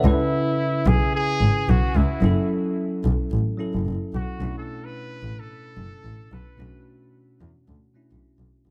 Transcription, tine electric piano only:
0.00 2.18 C#3 medium
0.00 0.19 A4 medium
0.00 0.19 D5 medium
0.04 2.19 C#4 medium
0.04 2.19 E4 medium
0.04 2.20 B4 medium
2.20 3.55 F#3 medium
2.20 3.56 C#4 medium
2.20 3.57 E4 medium
2.25 3.58 A4 medium
3.58 4.40 F#3 medium
3.58 4.40 C#4 medium
3.58 4.41 E4 medium
3.58 4.42 A4 medium
4.38 6.54 B2 medium
4.38 6.55 A3 medium
4.38 6.55 C#4 medium
4.38 6.56 D4 medium
4.44 6.56 E4 medium
6.57 7.91 B2 medium
6.57 7.92 A3 medium
6.57 7.93 C#4 medium
6.57 7.93 D4 medium
6.62 7.94 F#4 medium
7.94 8.70 B2 medium
7.94 8.70 A3 medium
7.94 8.70 C#4 medium
7.94 8.70 D4 medium
7.94 8.70 E4 medium

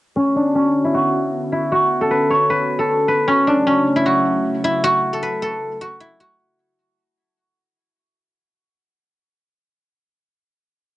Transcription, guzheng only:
0.16 0.42 C#4 medium
0.36 0.61 D4 medium
0.55 3.27 C#4 medium
0.84 1.52 E4 medium
0.94 1.71 F#4 medium
1.52 3.96 E4 medium
1.72 4.05 F#4 medium
2.01 2.79 A4 medium
2.11 2.50 B4 medium
2.30 3.53 C#5 medium
2.50 3.08 B4 medium
2.79 4.99 A4 medium
3.08 5.13 B4 medium
3.28 3.53 C#4 loud
3.47 3.73 D4 medium
3.67 6.57 C#4 medium
3.96 4.64 E4 medium
4.06 4.83 F#4 medium
4.64 6.00 E4 medium
4.84 5.81 F#4 loud
5.13 5.42 A4 medium
5.23 7.28 B4 medium
5.42 7.62 A4 medium
5.81 6.20 F#4 medium
6.00 8.62 E4 medium
6.20 8.64 F#4 medium

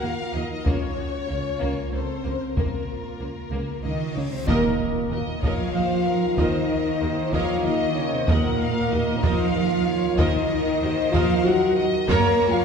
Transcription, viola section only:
0.00 0.66 A#4 medium
0.66 0.98 F4 medium
0.99 1.30 F#4 soft
1.30 1.92 F4 medium
1.92 2.24 A4 soft
2.25 2.57 A#4 soft
2.56 4.15 F4 soft
4.47 4.77 A#4 medium
4.47 4.77 D#5 medium
5.11 5.19 F#4 soft
5.11 5.19 A#4 medium
5.44 5.73 A#4 medium
5.44 5.73 D#5 medium
5.75 5.83 A#4 soft
5.75 5.83 D#5 medium
6.38 6.68 A#4 medium
6.38 6.68 D#5 medium
7.02 7.10 F#4 medium
7.02 7.10 A#4 medium
7.33 7.63 A#4 medium
7.33 7.63 D#5 medium
7.65 7.73 A#4 medium
7.65 7.73 D#5 medium
8.28 8.58 A#4 medium
8.28 8.58 D#5 medium
8.92 9.00 F#4 medium
8.92 9.01 A#4 medium
9.23 9.53 A#4 medium
9.23 9.53 D#5 medium
9.55 9.63 A#4 medium
9.55 9.63 D#5 medium
10.19 10.48 A#4 medium
10.19 10.48 D#5 medium
10.82 10.90 F#4 medium
10.82 10.90 A#4 medium
11.13 11.43 A#4 medium
11.13 11.43 D#5 medium
11.45 11.53 A#4 medium
11.45 11.54 D#5 medium
12.10 12.39 A#4 loud
12.10 12.39 C#5 loud

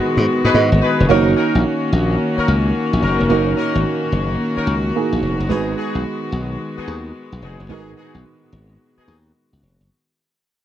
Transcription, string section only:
0.00 1.05 D#3 medium
0.00 1.05 G#3 medium
0.00 1.05 B3 medium
0.00 1.05 F#4 medium
1.09 9.86 D#3 medium
1.09 5.45 A#3 medium
1.09 5.46 C#4 medium
1.09 9.86 F#4 medium
5.50 9.86 G#3 medium
5.50 9.87 B3 medium

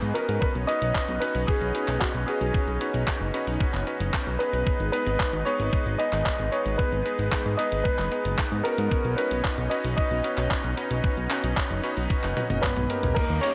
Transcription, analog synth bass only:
0.02 0.13 G#2 medium
0.29 0.40 G#2 medium
0.55 0.66 B1 medium
0.82 0.93 B1 medium
1.09 1.19 B1 medium
1.35 1.46 B1 medium
1.61 1.72 B1 medium
1.88 1.99 B1 medium
2.15 2.25 B1 medium
2.41 2.52 B1 medium
2.68 2.78 B1 medium
2.94 3.05 B1 medium
3.21 3.32 F#1 medium
3.47 3.58 B1 medium
3.74 3.85 F#1 medium
4.00 4.11 F#1 medium
4.27 4.38 B1 medium
4.53 4.64 B1 medium
4.80 4.91 G#1 medium
5.06 5.17 G#1 medium
5.33 5.44 G#1 medium
5.60 5.70 G#1 medium
5.86 5.97 G#1 medium
6.13 6.23 G#1 medium
6.39 6.50 G#1 medium
6.66 6.77 G#1 medium
6.92 7.03 G#1 medium
7.19 7.30 G#1 medium
7.46 7.56 G#2 medium
7.72 7.83 G#1 medium
7.99 8.09 F#1 medium
8.25 8.36 F#1 medium
8.52 8.63 G#2 medium
8.78 8.89 G#2 medium
9.05 9.16 B1 medium
9.31 9.42 B1 medium
9.58 9.69 B1 medium
9.85 9.95 B1 medium
10.11 10.22 B1 medium
10.38 10.48 B1 medium
10.64 10.75 B1 medium
10.91 11.01 B1 medium
11.17 11.28 B1 medium
11.44 11.55 B1 medium
11.70 11.81 F#1 medium
11.97 12.08 B1 medium
12.23 12.34 F#1 medium
12.50 12.61 F#1 medium
12.77 12.87 B1 medium
13.03 13.14 B1 medium
13.30 13.41 D#2 medium

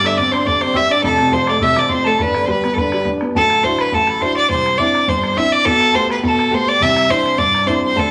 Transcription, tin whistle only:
0.05 0.19 E6 medium
0.17 0.32 D6 medium
0.33 0.48 C6 medium
0.46 0.62 D6 medium
0.75 0.90 E6 medium
0.91 0.97 D6 medium
1.05 1.31 A5 medium
1.05 1.09 B5 medium
1.33 1.49 C6 medium
1.48 1.61 D6 medium
1.61 1.78 E6 medium
1.76 1.88 D6 medium
1.88 2.06 C6 medium
2.04 2.20 A5 medium
2.18 2.47 B5 medium
2.48 2.75 B5 medium
2.77 3.04 B5 medium
3.35 3.65 A5 medium
3.63 3.81 C6 medium
3.79 3.92 B5 medium
3.93 4.11 A5 medium
4.09 4.22 B5 medium
4.20 4.39 C6 medium
4.38 4.50 D6 medium
4.51 4.80 C6 medium
4.79 5.08 D6 medium
5.09 5.39 C6 medium
5.37 5.55 E6 medium
5.54 5.68 D6 loud
5.66 5.97 A5 medium
5.96 6.13 C6 medium
6.11 6.24 B5 medium
6.24 6.29 B5 medium
6.28 6.56 A5 medium
6.54 6.70 C6 medium
6.69 6.84 D6 medium
6.82 7.10 E6 medium
7.11 7.38 C6 medium
7.39 7.70 D6 medium
7.68 7.82 C6 medium
7.83 7.98 C6 medium
7.97 8.11 A5 medium

